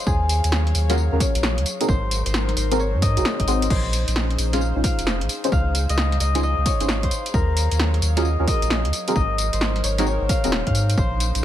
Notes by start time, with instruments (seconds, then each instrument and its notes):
Already playing: analog synth pad F#3 G#4 C#5 F5, harp C5 D#5
0.07 sub bass D#2, harp G#4, kick, tambourine
0.29 open hi-hat, tambourine
0.44 sub bass D#2, closed hi-hat, tambourine
0.52 snare, tambourine
0.67 closed hi-hat
0.75 sub bass D#2, open hi-hat, tambourine
0.90 synth stab C#4 F4 F#4 G#4 A#4, harp C#5, snare, closed hi-hat, tambourine
0.98 tambourine
1.12 sub bass D#2, synth stab C#4 F4 F#4 G#4 A#4
1.20 harp C#5, kick, open hi-hat, tambourine
1.35 sub bass A#1, closed hi-hat, tambourine
1.43 snare, tambourine
1.58 sub bass D#2, closed hi-hat
1.66 analog synth pad D#4 A#4 C5, open hi-hat, tambourine
1.81 synth stab C4 D#4 F#4 G#4 A#4, closed hi-hat, tambourine
1.88 sub bass G#1, harp C5, kick, tambourine
2.11 open hi-hat, tambourine
2.26 sub bass G#1, harp C5, closed hi-hat, tambourine
2.34 snare, tambourine
2.49 snare, closed hi-hat
2.57 sub bass G#1, harp C5, open hi-hat, tambourine
2.71 synth stab C4 D#4 F#4 G#4 A#4, snare, closed hi-hat, tambourine
2.79 harp C#5, tambourine
2.94 sub bass G#2
3.02 harp D#5, kick, open hi-hat, tambourine
3.17 sub bass G#1, synth stab C4 D#4 F#4 G#4 A#4, closed hi-hat, tambourine
3.25 snare, tambourine
3.39 sub bass G#1, harp D#5, kick, closed hi-hat
3.48 synth stab C4 D#4 F#4 G#4 C5, open hi-hat, tambourine
3.62 closed hi-hat, tambourine
3.70 sub bass A#1, analog synth pad C#4 D#4 G#4, harp C5, kick, crash, tambourine
3.93 open hi-hat, tambourine
4.08 sub bass A#1, closed hi-hat, tambourine
4.16 snare
4.31 closed hi-hat
4.38 sub bass A#1, open hi-hat, tambourine
4.53 synth stab C#4 D#4 F4 G#4 C5, harp F5, snare, closed hi-hat, tambourine
4.61 tambourine
4.76 sub bass A#1, synth stab C#4 D#4 F4 G#4 C5
4.84 harp F5, kick, open hi-hat, tambourine
4.99 sub bass F1, closed hi-hat, tambourine
5.07 snare, tambourine
5.21 sub bass A#1, closed hi-hat
5.29 open hi-hat, tambourine
5.44 synth stab C#4 D#4 F4 G#4 C5, closed hi-hat, tambourine
5.52 sub bass C#2, analog synth pad F5, harp F5, kick, tambourine
5.75 open hi-hat, tambourine
5.89 sub bass C#2, harp D#5, closed hi-hat, tambourine
5.98 snare, tambourine
6.12 snare, closed hi-hat
6.20 sub bass C#2, harp D#5, open hi-hat, tambourine
6.35 synth stab C#4 D#4 F4 G#4 C5, snare, closed hi-hat, tambourine
6.43 harp D#5, tambourine
6.58 sub bass C#2
6.66 harp C#5, kick, open hi-hat, tambourine
6.80 sub bass G#1, synth stab C#4 D#4 F4 G#4 C5, closed hi-hat, tambourine
6.89 snare, tambourine
7.03 sub bass C#2, harp C5, kick, closed hi-hat
7.11 analog synth pad F#3 C#5, open hi-hat, tambourine
7.26 closed hi-hat, tambourine
7.34 sub bass D#2, harp A#4, kick, tambourine
7.57 open hi-hat, tambourine
7.71 sub bass D#2, closed hi-hat, tambourine
7.79 snare, tambourine
7.94 closed hi-hat
8.02 sub bass D#2, open hi-hat, tambourine
8.17 synth stab C#4 F4 F#4 G#4 A#4, harp D#5, snare, closed hi-hat, tambourine
8.25 tambourine
8.39 sub bass D#2, synth stab C#4 F4 F#4 G#4 A#4
8.48 harp D#5, kick, open hi-hat, tambourine
8.62 sub bass A#1, closed hi-hat, tambourine
8.70 snare, tambourine
8.85 sub bass D#2, closed hi-hat
8.93 analog synth pad D#4 A#4 C5, open hi-hat, tambourine
9.08 synth stab C4 D#4 F#4 G#4 A#4, closed hi-hat, tambourine
9.16 sub bass G#1, harp D#5, kick, tambourine
9.38 open hi-hat, tambourine
9.53 sub bass G#1, harp C5, closed hi-hat, tambourine
9.61 snare, tambourine
9.76 snare, closed hi-hat
9.84 sub bass G#1, harp C#5, open hi-hat, tambourine
9.98 synth stab C4 D#4 F#4 G#4 A#4, snare, closed hi-hat, tambourine
10.07 harp C#5, tambourine
10.21 sub bass G#1
10.29 harp F5, kick, open hi-hat, tambourine
10.44 sub bass D#1, synth stab C4 D#4 F#4 G#4 A#4, closed hi-hat, tambourine
10.52 snare, tambourine
10.67 sub bass G#2, harp F5, kick, closed hi-hat
10.75 open hi-hat, tambourine
10.90 closed hi-hat, tambourine
10.98 sub bass A#1, analog synth pad C#4 G#4, harp C5, kick, tambourine
11.20 open hi-hat, tambourine
11.35 sub bass A#1, closed hi-hat, tambourine